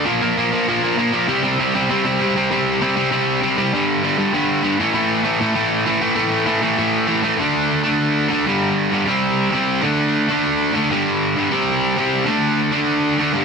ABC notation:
X:1
M:4/4
L:1/8
Q:1/4=196
K:Aphr
V:1 name="Distorted electric guitar" clef=bass
[B,,F,B,] [B,,F,B,] [B,,F,B,] [B,,F,B,] [B,,F,B,] [B,,F,B,] [B,,F,B,] [B,,F,B,] | [C,G,C] [C,G,C] [C,G,C] [C,G,C] [C,G,C] [C,G,C] [C,G,C] [C,G,C] | [C,G,C]2 [C,G,C] [C,G,C] [C,G,C]2 [C,G,C] [C,G,C] | [G,,D,G,]2 [G,,D,G,] [G,,D,G,] [G,,D,G,]2 [G,,D,G,] [A,,E,A,] |
[A,,E,A,]2 [A,,E,A,] [A,,E,A,] [A,,E,A,]2 [A,,E,A,] [A,,E,A,] | [A,,E,A,]2 [A,,E,A,] [A,,E,A,] [A,,E,A,]2 [A,,E,A,] [A,,E,A,] | [K:C] [D,A,D]3 [D,A,D]3 [D,A,D] [G,,D,G,]- | [G,,D,G,]2 [G,,D,G,] [C,G,C]3 [C,G,C]2 |
[D,A,D]3 [D,A,D]3 [D,A,D] [G,,D,G,]- | [G,,D,G,]2 [G,,D,G,] [C,G,C]3 [C,G,C]2 | [D,A,D]3 [D,A,D]3 [D,A,D] [G,,D,G,] |]